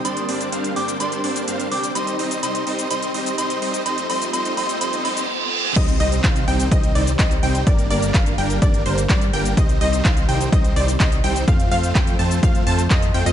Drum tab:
CC |----------------|----------------|----------------|x---------------|
HH |xxoxxxoxxxoxxxox|xxoxxxoxxxoxxxox|xxoxxxoxxxox----|xxoxxxoxxxoxxxox|
SH |xx-xxx-xxx-xxx-x|xx-xxx-xxx-xxx-x|xx-xxx-xxx-x----|xx-xxx-xxx-xxx-x|
CP |----------------|----------------|----------------|----x-------x---|
BD |----------------|----------------|----------------|o---o---o---o---|

CC |----------------|----------------|----------------|
HH |xxoxxxoxxxoxxxox|xxoxxxoxxxoxxxox|xxoxxxoxxxoxxxox|
SH |xx-xxx-xxx-xxx-x|xx-xxx-xxx-xxx-x|xx-xxx-xxx-xxx-x|
CP |----x-------x---|----x-------x---|----x-------x---|
BD |o---o---o---o---|o---o---o---o---|o---o---o---o---|